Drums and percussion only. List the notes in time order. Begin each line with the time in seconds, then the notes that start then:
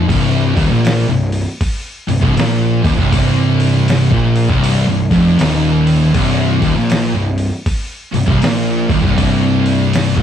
0.09 kick, open hi-hat
0.57 kick, open hi-hat
0.85 snare, open hi-hat
1.32 open hi-hat
1.61 kick, open hi-hat
2.09 open hi-hat
2.23 kick
2.37 snare, open hi-hat
2.84 kick, open hi-hat
2.98 kick
3.12 kick, open hi-hat
3.60 open hi-hat
3.88 snare, open hi-hat
4.12 kick
4.36 open hi-hat
4.50 kick
4.64 open hi-hat
5.11 kick, open hi-hat
5.39 snare, open hi-hat
5.87 open hi-hat
6.14 kick, open hi-hat
6.62 kick, open hi-hat
6.90 snare, open hi-hat
7.38 open hi-hat
7.66 kick, open hi-hat
8.14 open hi-hat
8.28 kick
8.42 snare, open hi-hat
8.90 kick, open hi-hat
9.04 kick
9.18 kick, open hi-hat
9.66 open hi-hat
9.93 snare, open hi-hat
10.18 kick